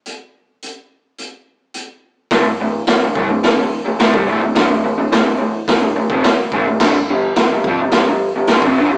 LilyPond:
<<
  \new Staff \with { instrumentName = "Overdriven electric guitar" } { \clef bass \time 4/4 \key g \lydian \tempo 4 = 107 r1 | <d, a,>16 r16 <d, a,>8 r16 <d, a,>16 <c g>16 <d, a,>16 <d, a,>16 <d, a,>8 <d, a,>16 <d, a,>16 <c g>16 <d, a,>16 <d, a,>16 | <g, d>16 <d, a,>16 <d, a,>16 <d, a,>16 <d, a,>16 <d, a,>16 <d, a,>8 r16 <d, a,>16 <d, a,>16 <f, c>16 r8 <gis, ees>16 <d, a,>16 | <g, d>16 r16 <g, d>8 r16 <g, d>16 <f c'>16 <g, d>16 <g, d>16 <g, d>8 <g, d>16 <g, d>16 <f, c>16 <g, d>16 <g, d>16 | }
  \new DrumStaff \with { instrumentName = "Drums" } \drummode { \time 4/4 hh4 hh4 hh4 hh4 | <hho bd sn>4 <hho sn>8 bd8 <hho sn>4 <hho sn>16 bd8. | <hho bd sn>4 <hho sn>4 <hho bd sn>8. bd16 <hho sn>8 bd8 | <cymc bd sn>4 <hho sn>8 bd8 <hho sn>4 <hho sn>16 bd8. | }
>>